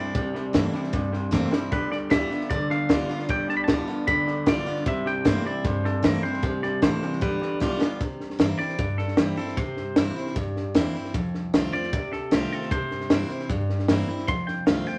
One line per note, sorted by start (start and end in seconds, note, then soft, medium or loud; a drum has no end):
0.00 0.11 G2 medium
0.00 0.13 C3 medium
0.00 0.13 G3 medium
0.00 0.15 C4 medium
0.00 0.14 E4 medium
0.00 1.09 D5 medium
0.15 0.27 C2 medium
0.15 0.33 C3 medium
0.15 0.90 C3 medium
0.15 0.33 G3 medium
0.15 kick loud
0.15 snare soft
0.34 0.47 G2 medium
0.34 0.52 C3 medium
0.34 0.52 G3 medium
0.34 snare soft
0.53 0.67 G2 medium
0.53 0.72 C3 medium
0.53 0.73 E3 medium
0.53 0.72 A3 loud
0.53 0.73 A#3 medium
0.53 0.73 C4 medium
0.53 0.72 E4 medium
0.53 kick medium
0.53 snare loud
0.53 hi-hat pedal medium
0.73 0.91 C3 medium
0.73 0.92 G3 medium
0.73 0.93 C4 soft
0.73 0.93 E4 medium
0.73 snare soft
0.84 snare soft
0.93 1.68 G2 loud
0.93 1.11 C3 medium
0.93 1.11 G3 medium
0.93 kick loud
0.93 snare soft
1.12 1.30 C3 medium
1.12 1.31 G3 medium
1.12 snare soft
1.31 1.45 F1 medium
1.31 1.50 C3 medium
1.31 1.51 E3 medium
1.31 1.50 A3 medium
1.31 1.51 A#3 medium
1.31 1.51 C4 loud
1.31 1.50 E4 medium
1.31 kick medium
1.31 snare medium
1.31 hi-hat pedal medium
1.51 1.70 C3 medium
1.51 1.70 G3 medium
1.51 1.72 C4 soft
1.51 1.71 E4 medium
1.51 snare medium
1.71 1.84 G1 medium
1.71 1.89 G2 medium
1.71 1.89 D3 loud
1.71 2.09 G3 medium
1.71 1.91 B4 medium
1.71 kick loud
1.71 snare soft
1.91 2.04 D2 medium
1.91 2.09 G2 medium
1.91 2.09 D3 medium
1.91 1.97 D5 medium
1.91 snare soft
2.10 2.24 D2 medium
2.10 2.29 G2 medium
2.10 2.29 E3 loud
2.10 2.30 G3 medium
2.10 2.30 B3 medium
2.10 2.29 F4 medium
2.10 2.48 E5 medium
2.10 kick medium
2.10 snare loud
2.10 hi-hat pedal medium
2.30 2.48 G2 medium
2.30 2.49 D3 loud
2.30 2.50 B3 soft
2.30 2.50 F4 medium
2.30 muted upright bass stroke medium
2.30 snare soft
2.41 snare soft
2.50 2.63 F2 medium
2.50 2.68 G2 medium
2.50 3.25 D3 medium
2.50 2.69 D3 medium
2.50 2.68 D5 loud
2.50 kick loud
2.50 snare soft
2.70 2.83 E2 medium
2.70 2.88 G2 medium
2.70 2.88 D3 medium
2.70 3.30 F5 medium
2.70 snare soft
2.89 3.02 D2 medium
2.89 3.08 G2 medium
2.89 3.08 E3 medium
2.89 3.08 G3 medium
2.89 3.09 B3 medium
2.89 3.08 F4 loud
2.89 kick medium
2.89 snare loud
2.89 hi-hat pedal medium
3.09 3.27 G2 medium
3.09 3.28 D3 medium
3.09 3.29 B3 soft
3.09 3.28 F4 medium
3.09 snare soft
3.19 snare soft
3.29 3.42 G1 medium
3.29 3.47 G2 medium
3.29 3.47 D3 medium
3.29 3.66 G3 medium
3.29 3.49 G5 loud
3.29 kick loud
3.29 snare soft
3.48 3.61 D2 medium
3.48 3.66 G2 medium
3.48 3.66 D3 medium
3.48 3.56 A5 loud
3.48 snare soft
3.57 3.63 B5 medium
3.64 3.87 G3 medium
3.64 4.07 A5 loud
3.68 3.81 D2 medium
3.68 3.86 G2 medium
3.68 3.86 E3 loud
3.68 3.87 B3 medium
3.68 3.86 F4 medium
3.68 kick medium
3.68 snare loud
3.68 hi-hat pedal medium
3.87 4.06 G2 medium
3.87 4.06 D3 loud
3.87 4.07 B3 soft
3.87 4.07 F4 medium
3.87 muted upright bass stroke medium
3.87 snare soft
4.07 4.20 F2 medium
4.07 4.25 G2 medium
4.07 4.82 D3 loud
4.07 4.25 D3 medium
4.07 4.48 B5 loud
4.07 kick loud
4.07 snare soft
4.27 4.40 E2 medium
4.27 4.45 G2 medium
4.27 4.45 D3 medium
4.27 snare soft
4.46 4.59 B1 medium
4.46 4.64 G2 medium
4.46 4.65 E3 loud
4.46 4.65 G3 medium
4.46 4.66 B3 medium
4.46 4.65 F4 medium
4.46 4.87 D5 loud
4.46 kick medium
4.46 snare loud
4.46 hi-hat pedal medium
4.66 4.84 G2 medium
4.66 4.85 D3 medium
4.66 4.86 B3 soft
4.66 4.85 F4 medium
4.66 muted upright bass stroke medium
4.66 snare soft
4.76 snare soft
4.86 4.99 C2 loud
4.86 5.04 C3 medium
4.86 5.61 C3 medium
4.86 5.04 G3 loud
4.86 5.07 E5 medium
4.86 kick loud
4.86 snare soft
5.05 5.18 G2 loud
5.05 5.23 C3 medium
5.05 5.24 G3 medium
5.05 5.27 G5 loud
5.05 snare soft
5.25 5.38 G2 medium
5.25 5.43 C3 loud
5.25 5.44 E3 medium
5.25 5.43 A3 loud
5.25 5.44 A#3 medium
5.25 5.45 C4 medium
5.25 5.44 E4 medium
5.25 5.46 C5 loud
5.25 kick medium
5.25 snare loud
5.25 hi-hat pedal medium
5.45 5.63 C3 medium
5.45 5.63 G3 loud
5.45 5.65 C4 soft
5.45 5.64 E4 medium
5.45 5.66 D5 loud
5.45 snare soft
5.64 6.39 G2 medium
5.64 5.82 C3 medium
5.64 5.82 G3 medium
5.64 5.86 C5 loud
5.64 kick loud
5.64 snare soft
5.84 6.02 C3 medium
5.84 6.02 G3 medium
5.84 6.04 A4 medium
5.84 snare soft
6.03 6.16 G2 medium
6.03 6.22 C3 medium
6.03 6.22 E3 medium
6.03 6.22 A3 medium
6.03 6.23 A#3 medium
6.03 6.23 C4 loud
6.03 6.22 E4 loud
6.03 6.24 A#4 medium
6.03 kick medium
6.03 snare loud
6.03 hi-hat pedal medium
6.23 6.41 C3 medium
6.23 6.41 G3 medium
6.23 6.43 C4 soft
6.23 6.42 E4 medium
6.23 6.63 C5 medium
6.23 muted upright bass stroke medium
6.23 snare soft
6.33 snare soft
6.43 7.18 C3 medium
6.43 6.61 C3 medium
6.43 6.61 G3 medium
6.43 kick loud
6.43 snare soft
6.62 6.75 G2 medium
6.62 6.80 C3 medium
6.62 6.81 G3 medium
6.62 6.82 D5 medium
6.62 snare soft
6.82 6.95 A1 medium
6.82 7.00 C3 medium
6.82 7.19 E3 medium
6.82 7.00 A3 loud
6.82 7.20 A#3 medium
6.82 7.20 C4 medium
6.82 7.20 E4 medium
6.82 7.22 C5 medium
6.82 kick medium
6.82 snare loud
6.82 hi-hat pedal medium
7.02 7.20 C3 medium
7.02 7.20 G3 medium
7.02 snare soft
7.12 snare soft
7.21 7.34 G1 loud
7.21 7.40 G2 medium
7.21 7.40 D3 medium
7.21 7.59 G3 medium
7.21 7.59 B4 medium
7.21 kick loud
7.21 snare soft
7.41 7.59 G2 medium
7.41 7.59 D3 medium
7.41 snare soft
7.60 7.74 B1 medium
7.60 7.79 G2 medium
7.60 7.79 E3 medium
7.60 7.79 G3 medium
7.60 7.80 B3 medium
7.60 7.79 F4 medium
7.60 kick medium
7.60 snare medium
7.60 hi-hat pedal medium
7.80 7.98 G2 medium
7.80 7.99 D3 medium
7.80 8.00 B3 soft
7.80 7.99 F4 medium
7.80 snare medium
8.01 8.13 C2 medium
8.01 8.75 C3 medium
8.01 kick loud
8.01 snare soft
8.20 8.32 G2 medium
8.20 snare soft
8.30 snare soft
8.39 8.52 G2 medium
8.39 8.58 E3 medium
8.39 8.58 A#3 medium
8.39 8.59 C4 medium
8.39 8.58 E4 medium
8.39 snare loud
8.39 hi-hat pedal medium
8.59 8.79 C4 medium
8.59 8.78 E4 medium
8.59 8.97 D5 loud
8.59 muted upright bass stroke medium
8.59 snare soft
8.69 snare soft
8.78 9.53 G2 medium
8.78 8.91 A#2 medium
8.78 kick loud
8.78 snare soft
8.98 9.11 A2 medium
8.98 9.17 A4 medium
8.98 snare soft
9.08 snare soft
9.17 9.31 G2 medium
9.17 9.37 E3 medium
9.17 9.37 A#3 medium
9.17 9.37 C4 medium
9.17 9.36 E4 medium
9.17 9.37 G4 medium
9.17 snare loud
9.17 hi-hat pedal medium
9.37 9.57 C4 medium
9.37 9.56 E4 medium
9.37 9.57 A4 medium
9.37 muted upright bass stroke medium
9.37 snare soft
9.47 snare soft
9.57 9.70 C2 medium
9.57 10.32 C3 medium
9.57 10.33 C5 medium
9.57 kick loud
9.57 snare soft
9.77 9.90 G2 medium
9.77 snare soft
9.96 10.09 G2 medium
9.96 10.15 E3 medium
9.96 10.15 A#3 medium
9.96 10.16 C4 medium
9.96 10.15 E4 medium
9.96 snare loud
9.96 hi-hat pedal medium
10.16 10.36 C4 soft
10.16 10.35 E4 medium
10.16 muted upright bass stroke medium
10.16 snare soft
10.26 snare soft
10.36 11.10 G2 loud
10.36 10.49 A#2 medium
10.36 kick loud
10.36 snare soft
10.56 10.68 A2 medium
10.56 snare soft
10.74 10.88 E2 medium
10.74 10.94 E3 medium
10.74 10.94 A#3 medium
10.74 10.94 C4 medium
10.74 10.93 E4 medium
10.74 snare loud
10.74 hi-hat pedal medium
10.95 11.14 C4 soft
10.95 11.14 E4 medium
10.95 muted upright bass stroke medium
10.95 snare soft
11.05 snare soft
11.14 11.27 F1 medium
11.14 11.89 F2 medium
11.14 kick loud
11.14 snare soft
11.34 11.46 C2 loud
11.34 snare soft
11.53 11.66 C2 medium
11.53 11.72 D#3 medium
11.53 11.73 A3 medium
11.53 11.73 C4 medium
11.53 11.72 F4 medium
11.53 snare loud
11.53 hi-hat pedal medium
11.73 11.93 C4 soft
11.73 11.92 F4 medium
11.73 12.11 D5 loud
11.73 muted upright bass stroke medium
11.73 snare soft
11.83 snare soft
11.93 12.05 D#2 medium
11.93 12.68 C3 medium
11.93 kick loud
11.93 snare soft
12.12 12.25 D2 medium
12.12 12.33 A4 medium
12.12 snare soft
12.31 12.45 C2 medium
12.31 12.69 D#3 medium
12.31 12.69 A3 medium
12.31 12.70 C4 loud
12.31 12.70 F4 loud
12.31 12.52 G4 medium
12.31 snare loud
12.31 hi-hat pedal medium
12.51 12.71 A4 medium
12.51 snare soft
12.61 snare soft
12.71 12.84 C2 medium
12.71 13.46 C3 medium
12.71 13.48 C5 medium
12.71 kick loud
12.71 snare soft
12.91 13.04 G2 medium
12.91 snare soft
13.00 snare soft
13.10 13.23 G2 medium
13.10 13.29 E3 medium
13.10 13.30 A#3 medium
13.10 13.30 C4 medium
13.10 13.29 E4 medium
13.10 snare loud
13.10 hi-hat pedal medium
13.29 13.50 C4 soft
13.29 13.49 E4 medium
13.29 snare soft
13.40 snare soft
13.49 14.25 G2 medium
13.49 kick loud
13.49 snare soft
13.69 13.82 A2 medium
13.69 snare soft
13.79 snare soft
13.88 14.02 G2 medium
13.88 14.08 E3 medium
13.88 14.08 A#3 medium
13.88 14.09 C4 medium
13.88 14.07 E4 medium
13.88 snare loud
13.88 hi-hat pedal medium
14.08 14.29 C4 medium
14.08 14.28 E4 medium
14.08 muted upright bass stroke medium
14.08 snare soft
14.18 snare soft
14.28 14.41 F1 loud
14.28 14.98 F2 medium
14.28 14.48 C6 loud
14.28 kick loud
14.28 snare soft
14.47 14.61 C2 loud
14.47 14.66 G5 medium
14.47 snare soft
14.67 14.80 C2 medium
14.67 14.86 D#3 medium
14.67 14.87 A3 medium
14.67 14.87 C4 medium
14.67 14.85 F4 medium
14.67 14.87 F5 loud
14.67 snare loud
14.67 hi-hat pedal medium
14.86 14.98 C4 soft
14.86 14.98 F4 medium
14.86 14.98 G5 loud
14.86 snare soft